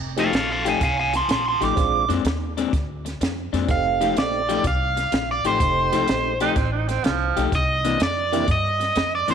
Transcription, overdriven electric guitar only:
0.19 0.34 A4 medium
0.19 0.34 F5 medium
0.35 0.49 A4 medium
0.35 0.50 F5 medium
0.52 0.65 A4 medium
0.52 0.66 F5 medium
0.68 0.82 F5 medium
0.68 0.83 G#5 medium
0.83 0.97 F5 medium
0.83 0.98 G#5 medium
0.99 1.13 F5 medium
0.99 1.14 G#5 medium
1.16 1.29 A5 medium
1.16 1.30 C6 medium
1.31 1.45 A5 medium
1.31 1.46 C6 medium
1.48 1.61 A5 medium
1.48 1.62 C6 medium
1.64 2.09 D6 medium
3.71 4.16 F5 medium
4.18 4.64 D5 medium
4.67 5.28 F5 medium
5.31 5.45 D5 medium
5.47 6.39 C5 medium
7.55 8.00 D#5 medium
8.03 8.48 D5 medium
8.51 9.12 D#5 medium
9.15 9.29 D5 medium
9.31 9.34 C5 medium

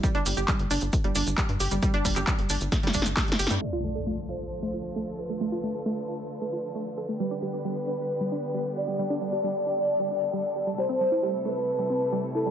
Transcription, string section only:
3.62 10.74 D3 medium
3.62 7.16 F3 medium
3.62 7.16 A3 medium
3.62 7.16 F4 medium
3.62 7.16 A4 medium
7.20 12.51 G3 medium
7.20 10.75 B3 medium
7.20 10.75 G4 medium
7.20 8.97 B4 medium
8.99 12.51 A4 medium
10.78 12.51 C3 medium
10.78 12.51 A3 medium
10.78 12.51 E4 medium

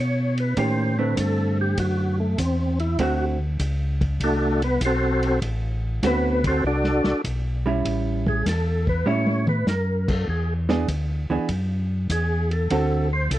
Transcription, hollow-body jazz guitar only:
0.57 0.94 D#3 medium
0.57 0.94 A#3 medium
0.57 0.94 C#4 medium
0.57 0.94 G4 medium
0.99 2.27 D3 medium
0.99 2.27 A3 medium
0.99 2.28 C4 medium
2.99 3.36 D3 medium
2.99 3.37 A3 medium
2.99 3.37 C4 medium
2.99 3.37 F#4 medium
6.03 6.40 D3 medium
6.03 6.40 A3 medium
6.03 6.40 C4 medium
6.03 6.40 F#4 medium
7.66 8.42 G3 medium
7.66 8.42 C#4 medium
7.66 8.42 E4 medium
9.06 9.43 G3 medium
9.06 9.44 C#4 medium
9.06 9.44 E4 medium
10.69 10.86 E3 medium
10.69 10.86 B3 medium
10.69 10.87 D4 medium
10.69 10.87 G#4 medium
11.30 11.47 E3 medium
11.30 11.47 B3 medium
11.30 11.48 D4 medium
11.30 11.48 G#4 medium
12.71 13.08 D3 medium
12.71 13.08 C4 medium
12.71 13.08 F#4 medium
12.71 13.09 A4 medium

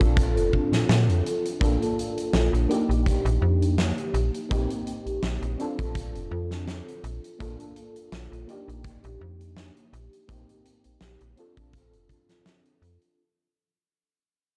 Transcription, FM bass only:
0.01 0.38 A#1 medium
0.36 0.50 F1 loud
0.72 0.86 A#2 soft
0.89 1.10 A#2 medium
1.08 1.22 F2 medium
1.61 1.77 A#1 loud
2.34 2.50 A#1 medium
2.53 2.67 A#1 medium
2.89 3.19 A#1 medium
3.25 3.39 A#1 loud
3.42 3.92 F2 medium
4.14 4.30 A#1 loud
4.51 4.67 A#1 medium
5.06 5.19 A#1 soft
5.23 5.39 A#1 medium
5.42 5.56 A#1 medium
5.79 6.16 A#1 medium
6.15 6.28 F1 loud
6.31 6.82 F2 medium
7.04 7.20 A#1 loud
7.41 7.56 A#1 medium
8.12 8.28 A#1 medium
8.32 8.45 A#1 medium
8.68 8.97 A#1 medium
9.04 9.18 A#1 loud
9.21 9.71 F2 medium
9.93 10.09 A#1 loud
10.29 10.45 A#1 medium
10.85 10.98 A#1 soft
11.01 11.17 A#1 medium
11.21 11.35 A#1 medium
11.57 11.94 A#1 medium
11.93 12.07 F1 loud
12.82 12.98 F2 medium

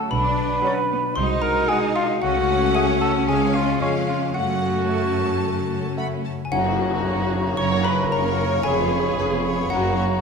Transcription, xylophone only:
0.11 1.12 B5 medium
1.16 1.40 C6 medium
1.42 1.67 A#5 medium
1.69 1.93 G#5 medium
1.96 2.20 F5 medium
2.22 2.71 F#5 medium
2.75 2.99 G#5 medium
3.01 3.26 A5 medium
3.29 3.53 G#5 medium
3.54 3.79 F5 medium
3.81 4.06 C#5 medium
4.07 4.33 F5 medium
4.34 5.93 F#5 medium
6.45 6.52 G#5 medium
6.52 7.54 F#5 loud
7.57 7.82 C#6 medium
7.85 8.09 B5 medium
8.12 8.61 A#5 medium
8.63 9.66 G#5 loud
9.70 10.20 F#5 medium

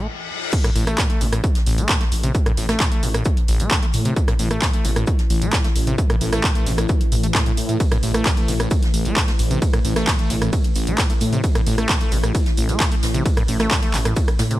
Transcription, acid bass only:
0.64 0.71 A2 loud
0.76 0.85 A2 medium
0.87 1.00 A3 loud
0.98 1.08 A2 medium
1.10 1.23 A3 medium
1.21 1.27 A2 medium
1.33 1.42 A2 medium
1.66 1.79 A1 medium
1.78 1.91 A3 loud
1.89 1.99 A2 medium
2.01 2.04 A3 medium
2.23 2.33 C3 loud
2.46 2.52 A2 loud
2.57 2.67 A2 medium
2.69 2.82 A3 loud
2.80 2.90 A2 medium
2.92 3.04 A3 medium
3.03 3.09 A2 medium
3.14 3.24 A2 medium
3.48 3.61 A1 medium
3.60 3.73 A3 loud
3.71 3.81 A2 medium
3.83 3.86 A3 medium
4.05 4.15 C3 loud
4.28 4.34 A2 loud
4.39 4.49 A2 medium
4.51 4.63 A3 loud
4.62 4.71 A2 medium
4.74 4.86 A3 medium
4.85 4.91 A2 medium
4.96 5.05 A2 medium
5.30 5.43 A1 medium
5.42 5.54 A3 loud
5.53 5.62 A2 medium
5.64 5.68 A3 medium
5.87 5.96 C3 loud
6.10 6.16 A2 loud
6.21 6.31 A2 medium
6.33 6.45 A3 loud
6.44 6.53 A2 medium
6.55 6.68 A3 medium
6.66 6.73 A2 medium
6.78 6.87 A2 medium
7.12 7.16 A2 medium
7.24 7.27 A3 medium
7.35 7.44 A2 loud
7.46 7.52 A2 loud
7.69 7.78 A2 medium
7.92 7.98 A2 loud
8.03 8.12 A2 medium
8.14 8.27 A3 loud
8.26 8.35 A2 medium
8.37 8.50 A3 medium
8.48 8.55 A2 medium
8.60 8.69 A2 medium
8.94 9.07 A1 medium
9.05 9.18 A3 loud
9.17 9.26 A2 medium
9.28 9.32 A3 medium
9.51 9.60 C3 loud
9.73 9.80 A2 loud
9.85 9.94 A2 medium
9.96 10.09 A3 loud
10.07 10.17 A2 medium
10.19 10.32 A3 medium
10.30 10.36 A2 medium
10.42 10.51 A2 medium
10.76 10.89 A1 medium
10.87 11.00 A3 loud
10.98 11.08 A2 medium
11.10 11.14 A3 medium
11.33 11.42 C3 loud
11.55 11.61 A2 loud
11.66 11.76 A2 medium
11.78 11.91 A3 loud
11.89 11.99 A2 medium
12.01 12.13 A3 medium
12.12 12.18 A2 medium
12.24 12.33 A2 medium
12.57 12.70 A1 medium
12.69 12.82 A3 loud
12.80 12.90 A2 medium
12.92 12.95 A3 medium
13.14 13.24 C3 loud
13.37 13.43 A2 loud
13.48 13.58 A2 medium
13.60 13.73 A3 loud
13.71 13.81 A2 medium
13.83 13.95 A3 medium
13.94 14.00 A2 medium
14.05 14.14 A2 medium
14.39 14.43 A2 medium
14.51 14.60 C3 medium

